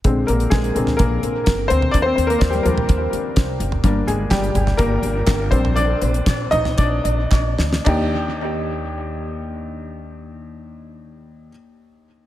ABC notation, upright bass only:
X:1
M:4/4
L:1/8
Q:1/4=121
K:Eb
V:1 name="Upright bass" clef=bass
B,,, B,,, B,,, B,,, B,,, B,,, G,,, D,, | E,, E,, E,, E,, E,, E,, C,, _G,,, | G,,, G,,, G,,, G,,, G,,, G,,, G,,, B,,,- | B,,, B,,, B,,, B,,, B,,, B,,, B,,, D,, |
E,,8- | E,,8 |]